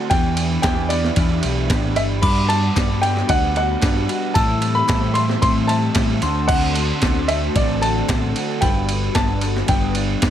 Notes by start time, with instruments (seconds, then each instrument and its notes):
Already playing: clean electric guitar A3, overdriven electric guitar A3 C4 F#4, upright piano A5
0.10 picked electric bass E2, clean electric guitar E3 B3 D4 G4, analog synth pad D5 E5 B5, upright piano G5, kick, ride
0.36 clean electric guitar B3 D4 G4, ride
0.62 picked electric bass E2, clean electric guitar E3 B3 D4 G4, upright piano G5, kick, snare, clap, ride
0.89 clean electric guitar B3 D4 G4, upright piano D5, clap, ride
1.04 snare
1.16 picked electric bass E2, clean electric guitar E3 B3 D4 G4, kick, ride
1.43 picked electric bass B1, overdriven electric guitar G4, ride
1.69 picked electric bass A1, clean electric guitar E3 B3 D4 G4, kick, snare, clap, ride
1.95 picked electric bass G1, clean electric guitar B3 D4 G4, upright piano E5, ride
2.21 picked electric bass G2, clean electric guitar G3 B3 D4 F#4, analog synth pad F#5, upright piano B5, glockenspiel D6, kick, crash
2.47 clean electric guitar B3 D4 F#4, upright piano A5, ride
2.74 picked electric bass G2, clean electric guitar G3 B3 D4 F#4, kick, snare, clap, ride
3.01 clean electric guitar B3 D4 F#4, upright piano G5, ride
3.17 snare
3.27 picked electric bass D2, clean electric guitar G3 B3 D4 F#4, upright piano F#5, kick, ride
3.56 overdriven electric guitar F#4, upright piano F#5, ride
3.81 picked electric bass G2, clean electric guitar G3 B3 D4 F#4, kick, snare, clap, ride
4.08 clean electric guitar B3 D4 F#4, ride
4.34 clean electric guitar A2 E3 G3 C4 E4, picked electric bass A2, analog synth pad G4 C5 E5 A5, upright piano A5, glockenspiel E6, kick, ride
4.61 clean electric guitar G3 C4 E4, ride
4.75 upright piano B5
4.88 picked electric bass A2, clean electric guitar E3 G3 C4 E4, kick, snare, clap, ride
5.14 clean electric guitar G3 C4 E4, upright piano C6, ride
5.30 snare
5.41 clean electric guitar A2 E3 G3 C4 E4, picked electric bass A2, upright piano C6, kick, ride
5.67 overdriven electric guitar G4, upright piano A5, ride
5.94 picked electric bass A2, clean electric guitar E3 G3 C4 E4, kick, snare, clap, ride
6.21 picked electric bass D2, clean electric guitar D3 A3 C4 F#4, analog synth pad A4 D5, glockenspiel C6, ride
6.48 clean electric guitar D3 A3 C4 F#4, upright piano F#5, kick, crash
6.74 clean electric guitar A3 C4 F#4, ride
7.01 picked electric bass D2, clean electric guitar D3 A3 C4 F#4, kick, snare, clap, ride
7.28 clean electric guitar A3 C4 F#4, upright piano E5, ride
7.55 picked electric bass A1, clean electric guitar D3 A3 C4 F#4, upright piano D5, kick, ride
7.82 overdriven electric guitar F#4, upright piano A5, ride
8.08 picked electric bass A1, clean electric guitar D3 A3 C4 F#4, kick, snare, clap, ride
8.35 clean electric guitar A3 C4 F#4, ride
8.61 picked electric bass G1, overdriven electric guitar G2, clean electric guitar G3 B3 D4 F#4, analog synth pad B4, upright piano G5, glockenspiel B5, kick, ride
8.89 clean electric guitar B3 D4 F#4, ride
9.15 picked electric bass G1, overdriven electric guitar D3, clean electric guitar G3 B3 D4 F#4, upright piano A5, kick, snare, clap, ride
9.41 clean electric guitar B3 D4 F#4, clap, ride
9.57 snare
9.67 picked electric bass G1, clean electric guitar G3 B3 D4 F#4, upright piano G5, kick, ride
9.95 overdriven electric guitar D4, ride
10.21 picked electric bass G2, clean electric guitar G3 B3 D4 F#4, kick, snare, clap, ride